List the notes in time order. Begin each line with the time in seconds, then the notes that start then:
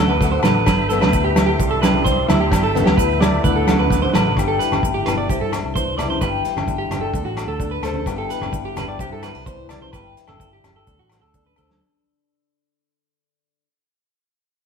Already playing: D2 D3 E5 F#5 D6
0.00 F#4
0.08 B4, high conga
0.21 A4, kick, snare, maracas
0.32 C5
0.43 A1 A4 B4, snare, low conga, low agogo, maracas
0.64 G1 B4 E5 G5 B5, kick, snare, low agogo, maracas
0.68 muted steel-string acoustic guitar stroke
0.89 B3 A4, snare, maracas
1.01 D2 B4, snare, high conga, low agogo
1.13 E4, kick, maracas
1.24 G4
1.36 A4, snare, low agogo, maracas
1.46 G4
1.58 C2 D5 E5 C6, muted steel-string acoustic guitar stroke, kick, maracas
1.71 A4
1.82 G3 B4, snare, high conga, low agogo, maracas
1.94 high conga
2.04 D4 C5, kick, snare, maracas
2.29 D2 E4, snare, low conga, low agogo, maracas
2.40 G4
2.50 G1 G5 B5, muted steel-string acoustic guitar stroke, kick, snare, low agogo, maracas
2.63 A4
2.75 B3, snare, high conga, low conga, maracas
2.85 D2 G4, snare, high conga, low agogo
2.97 E4 B4, kick, maracas
3.20 A4 D5, snare, low conga, low agogo, maracas
3.44 D2 D3 B4 F#5 D6, kick, low conga, maracas
3.56 A4
3.67 F#4, snare, high conga, low agogo, maracas
3.79 B4, high conga
3.90 A4, kick, snare, high conga, maracas
4.02 C5, high conga
4.13 A1 A4 B4, snare, low conga, low agogo, maracas
4.27 low conga
4.37 G1 G2 G4, kick, cross-stick, low agogo, maracas
4.48 A4
4.59 E4 B4, closed hi-hat, maracas
4.71 G1, cross-stick, high conga, low conga, low agogo
4.83 A2, kick, maracas
4.94 G4
5.06 G1 B2 B4, cross-stick, closed hi-hat, high conga, low agogo, maracas
5.18 D5
5.29 C2 C3 E4 G4, kick, maracas
5.40 G2 A4
5.52 D4, muted clean electric guitar stroke, cross-stick, closed hi-hat, low agogo, maracas
5.63 C2
5.75 E3 C5, kick, maracas
5.97 C2 E4 D5, cross-stick, closed hi-hat, low conga, low agogo, maracas
6.10 C5, high conga
6.21 G1 G2 G4 B4, kick, cross-stick, low agogo, maracas
6.45 E4, closed hi-hat, maracas
6.56 G1, cross-stick, high conga, low conga, low agogo
6.66 D3, kick, maracas
6.78 G4
6.90 G1 G4, cross-stick, closed hi-hat, high conga, low conga, low agogo, maracas
7.01 A4
7.14 D2 D3 A4, kick, maracas
7.23 A1 F#4
7.36 A4, cross-stick, closed hi-hat, low agogo, maracas
7.46 D2 A4
7.60 D4, kick, maracas
7.71 B4
7.82 D2 A4 C5, cross-stick, closed hi-hat, low conga, low agogo, maracas
7.94 high conga
8.06 G1 G2 D3 B3 E4 G4, kick, cross-stick, low agogo, maracas
8.18 A4
8.29 E4 B4, closed hi-hat, maracas
8.40 G1, cross-stick, high conga, low conga, low agogo
8.52 D3, kick, maracas
8.65 G4
8.76 G1 G4 B4, cross-stick, closed hi-hat, high conga, low conga, low agogo, maracas
8.88 D5
8.99 C2 C3 E4 G4, kick, maracas
9.10 G2 A4
9.22 B3 B4, cross-stick, closed hi-hat, low agogo, maracas
9.35 C2 D4
9.46 E3 C5, kick, maracas
9.68 C2 E4 D5, cross-stick, closed hi-hat, low conga, low agogo, maracas
9.81 C5, high conga
9.93 G1 G2 G4 B4, kick, cross-stick, low agogo, maracas
10.17 E4, closed hi-hat, maracas
10.28 G1 A4, cross-stick, high conga, low conga, low agogo
10.40 D3, kick, maracas
10.53 G4
10.64 G1 G4, cross-stick, closed hi-hat, high conga, low conga, low agogo, maracas
10.76 A4
10.87 D2 D3 A4, kick, maracas
10.99 A1 F#4
11.10 A4, cross-stick, closed hi-hat, low agogo, maracas
11.21 D2 A4
11.34 D4, kick, maracas
11.46 B4, high conga
11.56 D2 A4 C5, kick, low conga, low agogo, maracas
11.69 snare, high conga